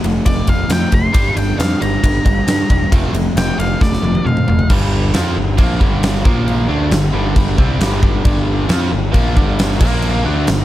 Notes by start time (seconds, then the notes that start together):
0.04 F1 F3 A3, ride
0.26 F1 F3 A3 D5, kick, ride
0.47 F1 F3 A3 F5, kick, ride
0.69 F2 F3 A3 G5, snare, ride
0.92 F1 F3 A3 C6, kick, ride
1.13 G1 G3 D4 G4, kick, ride
1.36 G1 G3 D4 G5, ride
1.59 F2 G3 D4 F5, snare, ride
1.81 G1 G3 D4 A#5, ride
2.03 G1 G3 D4, kick, ride
2.25 G1 G3 D4, kick, ride
2.47 G2 G3 D4, snare, ride
2.70 E1 G3 D4, kick, ride
2.92 F1 F3 A3 C4, kick, ride
3.13 F1 F3 A3, ride
3.35 F1 F3 A3 G5, snare, ride
3.58 F1 F3 A3 F5, ride
3.81 F1 F3 A3 D5, kick, snare
3.93 snare
4.03 F1 F3 A3, high tom
4.15 high tom
4.25 F2 F3 A3 F5, mid tom
4.37 mid tom
4.48 F1 F3 A3, floor tom
4.59 floor tom
4.70 G1 G2 D3 G3, kick, crash
5.14 F2 F3 C4 F4, snare, crash
5.36 G1 G2 D3
5.58 A#1 A#2 F3 A#3, kick, crash
5.79 G1 G2 D3 G3, kick
6.03 snare, crash
6.15 snare
6.24 A#1 A#2 F3 A#3, kick
6.48 crash
6.68 D2 D3 A3 D4
6.91 G1 G2 D3, snare, crash
7.12 G1 G2 D3 G3
7.36 kick, crash
7.57 C2 C3 G3 C4, kick
7.78 G1 G2 D3 G3, snare, crash
8.03 kick
8.24 G1 G2 D3 G3, kick, crash
8.68 F2 F3 C4 F4, snare, crash
8.92 G1 G2 D3
9.12 A#1 A#2 F3 A#3, kick, crash
9.36 G1 G2 D3 G3, kick
9.59 snare, crash
9.71 snare
9.80 A#1 A#2 F3 A#3, kick, crash
10.02 crash
10.25 D2 D3 A3 D4
10.47 G1 G2 D3, snare, crash